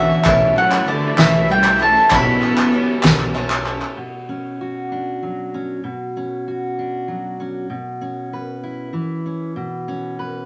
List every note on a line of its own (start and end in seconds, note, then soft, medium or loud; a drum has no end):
0.00 0.22 B1 medium
0.00 0.22 B2 medium
0.00 0.22 D3 medium
0.00 0.23 D3 medium
0.00 0.53 E3 medium
0.00 0.21 B3 medium
0.00 0.23 B3 medium
0.00 0.26 C#4 soft
0.00 0.26 D4 soft
0.00 0.22 F#4 medium
0.00 0.23 F#4 medium
0.00 0.25 F#4 medium
0.00 0.23 C#5 medium
0.00 0.53 E5 medium
0.10 tambourine soft
0.24 2.07 B1 medium
0.24 0.51 B1 loud
0.24 0.56 B2 medium
0.24 2.07 B2 medium
0.24 3.93 E3 medium
0.24 0.57 E3 medium
0.24 2.07 A3 medium
0.24 2.09 A3 medium
0.24 0.57 A3 medium
0.24 0.56 C#4 medium
0.24 3.93 E4 medium
0.24 2.07 E4 medium
0.24 2.08 A4 medium
0.24 0.55 A4 medium
0.24 2.09 E5 medium
0.24 kick loud
0.24 clap loud
0.24 ride medium
0.24 tambourine medium
0.56 0.85 F#3 medium
0.56 0.86 A3 soft
0.56 0.88 C#4 soft
0.56 0.87 A4 medium
0.56 0.86 F#5 loud
0.56 ride medium
0.71 clap medium
0.71 tambourine medium
0.86 1.16 D3 medium
0.86 1.18 E3 medium
0.86 1.18 A3 medium
0.86 1.18 A4 medium
0.86 1.20 D5 medium
0.86 ride medium
1.17 1.94 B1 medium
1.17 1.51 B2 medium
1.17 1.47 E3 medium
1.17 1.48 E3 medium
1.17 1.49 A3 medium
1.17 1.50 C#4 medium
1.17 1.50 A4 medium
1.17 1.50 E5 medium
1.17 snare loud
1.17 clap medium
1.17 ride medium
1.17 tambourine loud
1.48 1.80 E3 medium
1.48 1.79 G3 medium
1.48 1.81 A3 medium
1.48 1.81 C#4 medium
1.48 1.79 A4 medium
1.48 1.82 G5 medium
1.48 ride medium
1.48 tambourine soft
1.63 clap medium
1.63 tambourine medium
1.80 2.11 A3 soft
1.80 2.11 A3 medium
1.80 2.11 C#4 medium
1.80 2.11 A4 medium
1.80 2.13 A5 medium
1.80 clap soft
1.80 ride medium
1.95 tambourine soft
2.10 2.36 B1 loud
2.10 3.93 B1 medium
2.10 2.42 B2 medium
2.10 3.93 B2 medium
2.10 2.42 E3 medium
2.10 3.96 G3 medium
2.10 2.42 A3 medium
2.10 3.93 C#4 medium
2.10 2.42 C#4 medium
2.10 3.93 E4 medium
2.10 3.94 A4 medium
2.10 2.41 A4 medium
2.10 3.95 E5 medium
2.10 kick loud
2.10 clap loud
2.10 ride medium
2.10 tambourine loud
2.14 3.33 B3 medium
2.14 3.33 B5 medium
2.27 tambourine soft
2.42 2.72 A3 soft
2.42 2.73 C#4 soft
2.42 2.73 A4 medium
2.42 clap soft
2.42 ride medium
2.42 tambourine soft
2.58 clap medium
2.58 tambourine medium
2.72 3.03 E3 medium
2.72 3.02 A3 medium
2.72 3.02 C#4 medium
2.72 3.02 A4 medium
2.72 ride medium
3.03 3.80 B1 loud
3.03 3.35 B2 medium
3.03 3.33 E3 medium
3.03 3.35 A3 medium
3.03 3.35 C#4 medium
3.03 3.35 A4 medium
3.03 kick medium
3.03 snare loud
3.03 clap medium
3.03 ride medium
3.03 tambourine loud
3.19 clap soft
3.34 3.66 E3 medium
3.34 3.66 A3 medium
3.34 3.66 C#4 medium
3.34 3.64 A4 medium
3.34 clap soft
3.34 ride medium
3.50 clap medium
3.50 tambourine medium
3.65 3.98 A3 medium
3.65 3.98 C#4 medium
3.65 3.97 A4 medium
3.65 clap soft
3.65 ride medium
3.82 clap soft
3.97 5.82 B2 medium
4.29 5.54 C#4 soft
4.61 6.46 F#4 soft
4.92 5.80 D4 soft
5.23 5.80 F#3 soft
5.54 5.87 C#4 soft
5.84 7.69 B2 medium
6.17 7.39 C#4 soft
6.48 7.71 F#4 soft
6.79 7.67 D4 soft
7.08 7.66 F#3 soft
7.40 7.73 C#4 soft
7.70 8.94 B2 medium
8.01 9.25 C#4 soft
8.33 9.53 B4 soft
8.63 9.52 E4 soft
8.93 10.46 E3 soft
9.26 9.59 C#4 soft
9.56 10.46 B2 medium
9.88 10.46 C#4 soft
10.19 10.46 B4 soft